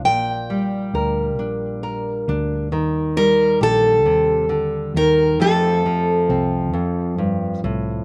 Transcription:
<<
  \new Staff \with { instrumentName = "Steel-string acoustic guitar" } { \time 6/8 \key f \mixolydian \tempo 4. = 45 g''4. r4. | r8 bes'8 a'4 r8 bes'8 | a'2 r4 | }
  \new Staff \with { instrumentName = "Nylon-string guitar" } { \clef bass \time 6/8 \key f \mixolydian << { r4 bes'8 d'8 bes'8 d'8 | r4 g'2 | <f a c' g'>4 c'2 | } \\ { bes,8 g2~ g8 | ees8 g4 c8 d8 ees8 | f,8 f4 f,8 g,8 a,8 | } >> }
  \new Staff \with { instrumentName = "Fretless electric bass" } { \clef bass \time 6/8 \key f \mixolydian bes,,4 d,8 bes,,4 d,8 | ees,4 bes,,8 ees,4 ees,8 | f,4 c,8 f,4 c,8 | }
>>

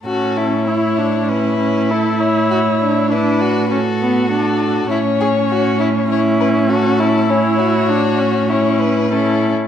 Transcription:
<<
  \new Staff \with { instrumentName = "Violin" } { \time 4/4 \key b \dorian \tempo 4 = 100 a'4 cis''4 b'4 a'8 cis''8~ | cis''4 b'4 a'4 a'4 | cis''2 cis''8 b'8 a'4 | cis''2 cis''8 b'8 a'8 r8 | }
  \new Staff \with { instrumentName = "Violin" } { \time 4/4 \key b \dorian fis'8 e'4. e'2 | fis'8 d'8 e'8 fis'8 fis'2 | e'8 gis'8 fis'8 e'8 e'4 fis'8 e'8 | cis'8 fis'4. e'4 e'8 r8 | }
  \new Staff \with { instrumentName = "Viola" } { \time 4/4 \key b \dorian cis'4 e'8 d'8 cis'8 cis'8 e'4~ | e'4 d'4 cis'8 b8 d'4 | cis'2 cis'2 | e'4 d'8 cis'4. cis'8 r8 | }
  \new Staff \with { instrumentName = "Cello" } { \clef bass \time 4/4 \key b \dorian a,1~ | a,1 | a,1~ | a,2.~ a,8 r8 | }
>>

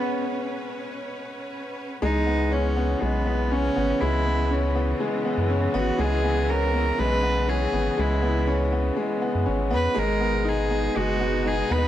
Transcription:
<<
  \new Staff \with { instrumentName = "Cello" } { \time 4/4 \key cis \dorian \tempo 4 = 121 r1 | dis'4 cis'4 b4 cis'4 | e'4. r2 fis'8 | gis'4 ais'4 b'4 gis'4 |
e'4. r2 b'8 | ais'4 gis'4 fis'4 gis'8 b'8 | }
  \new Staff \with { instrumentName = "String section" } { \time 4/4 \key cis \dorian <cis' b' cis''>1 | <cis e b>1~ | <cis e b>1~ | <cis e b>1~ |
<cis e b>1 | <b, gis dis'>1 | }
  \new Staff \with { instrumentName = "Upright piano" } { \time 4/4 \key cis \dorian r1 | gis8 b8 cis'8 b8 gis8 b8 cis'8 b8 | gis8 b8 cis'8 b8 gis8 b8 cis'8 b8 | gis8 b8 cis'8 b8 gis8 b8 cis'8 b8 |
gis8 b8 cis'8 b8 gis8 b8 cis'8 b8 | gis8 b8 dis'8 b8 gis8 b8 dis'8 b8 | }
  \new Staff \with { instrumentName = "Analog synth bass" } { \clef bass \time 4/4 \key cis \dorian r1 | cis,4.~ cis,16 r16 b,,4~ b,,16 r16 gis,,16 r16 | cis,4.~ cis,16 r4 fis,8 r16 gis,,16 r16 | cis,4.~ cis,16 r16 b,,4~ b,,16 r16 gis,,16 r16 |
cis,4.~ cis,16 r4 fis,16 gis,,8 e,16 r16 | gis,,4.~ gis,,16 r16 fis,,4~ fis,,16 r16 dis,16 r16 | }
>>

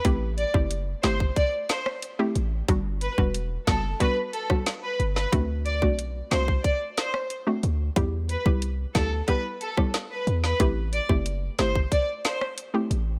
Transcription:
<<
  \new Staff \with { instrumentName = "Violin section" } { \time 4/4 \key a \dorian \tempo 4 = 91 r8 d''16 r8. c''16 r16 d''16 r16 c''16 r4 r16 | r8 b'16 r8. a'16 r16 b'16 r16 a'16 r8 b'16 r16 b'16 | r8 d''16 r8. c''16 r16 d''16 r16 c''16 r4 r16 | r8 b'16 r8. a'16 r16 b'16 r16 a'16 r8 b'16 r16 b'16 |
r8 d''16 r8. c''16 r16 d''16 r16 c''16 r4 r16 | }
  \new Staff \with { instrumentName = "Synth pluck" } { \time 4/4 \key a \dorian <a c' e' g'>8. <a c' e' g'>8. <a c' e' g'>8 r4 r16 <a c' e' g'>16 r8 | <g b d' fis'>8. <g b d' fis'>16 r8 <g b d' fis'>16 r16 <g b d' fis'>16 r8 <g b d' fis'>16 r4 | <a c' d' fis'>8. <a c' d' fis'>8. <a c' d' fis'>8 r4 r16 <a c' d' fis'>16 r8 | <g b e' g'>8. <g b e' g'>16 r8 <g b e' g'>16 r16 <g b e' g'>16 r8 <g b e' g'>16 r4 |
<a c' e' g'>8. <a c' e' g'>8. <a c' e' g'>8 r4 r16 <a c' e' g'>16 r8 | }
  \new Staff \with { instrumentName = "808-style bass" } { \clef bass \time 4/4 \key a \dorian a,,8. fis,,8. g,,8 r4. a,,8 | g,,8. e,,8. fis,,8 r4. g,,8 | d,8. b,,8. c,8 r4. d,8 | e,8. c,8. d,8 r4. e,8 |
a,,8. fis,,8. g,,8 r4. a,,8 | }
  \new DrumStaff \with { instrumentName = "Drums" } \drummode { \time 4/4 <hh bd>8 hh16 bd16 hh8 <hh sn>16 bd16 <hh bd>8 <hh sn>16 ss16 hh8 hh8 | <hh bd>8 hh16 bd16 hh8 <hh bd sn>8 <hh bd>8 hh16 <bd ss>16 <hh sn>8 hh16 sn16 | <hh bd>8 hh16 bd16 hh8 <hh sn>16 bd16 <hh bd>8 <hh sn>16 ss16 hh8 hh8 | <hh bd>8 hh16 bd16 hh8 <hh bd sn>8 <hh bd>8 hh16 <bd ss>16 <hh sn>8 hh16 sn16 |
<hh bd>8 hh16 bd16 hh8 <hh sn>16 bd16 <hh bd>8 <hh sn>16 ss16 hh8 hh8 | }
>>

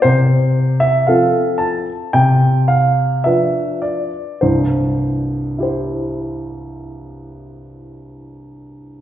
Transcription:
<<
  \new Staff \with { instrumentName = "Grand piano" } { \time 4/4 \key c \major \tempo 4 = 104 << { c''4. e''8 f''4 a''4 | g''4 f''4 e''4 d''4 | c''1~ | c''1 | } \\ { r1 | r1 | r2 <e' g' c''>2~ | <e' g' c''>1 | } >> }
  \new Staff \with { instrumentName = "Grand piano" } { \clef bass \time 4/4 \key c \major c2 <f c' a'>2 | c2 <f d' b'>2 | <c, g,>1~ | <c, g,>1 | }
>>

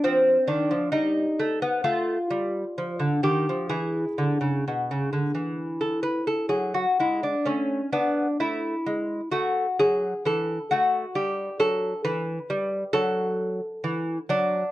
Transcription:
<<
  \new Staff \with { instrumentName = "Lute" } { \time 4/4 \key e \mixolydian \tempo 4 = 66 << { c'8 d'8 ees'4 f'4. g'8 | gis'2~ gis'16 a'16 b'16 a'16 gis'16 fis'16 e'16 d'16 | cis'8 d'8 e'4 fis'8 gis'8 a'8 fis'8 | g'8 a'8 b'4 a'4. d'8 | } \\ { r1 | e'1 | r1 | r1 | } >> }
  \new Staff \with { instrumentName = "Lute" } { \clef bass \time 4/4 \key e \mixolydian f8 ees16 f16 g8 a16 b16 a8 g8 f16 d16 ees16 f16 | e8 d16 cis16 b,16 cis16 d16 e4~ e16 fis8 gis8 | a8 b8 a8 gis8 a8 fis8 e8 a8 | g8 fis8 e8 g8 fis4 e8 fis8 | }
>>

